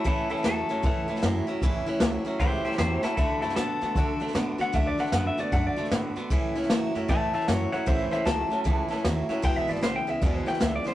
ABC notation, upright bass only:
X:1
M:4/4
L:1/8
Q:"Swing" 1/4=153
K:A
V:1 name="Upright bass" clef=bass
z C,, E,, F,, A,, z F,, z | A,,, z C,, z C,, z E,, z | D,, F,, A,, B,, D, z B,, z | D,, z F,, z F,, z A,, z |
z C,, E,, F,, A,, z F,, z | A,,, z C,, z C,, z ^D,, z | E,,, G,,, B,,, C,, E,, z C,, z |]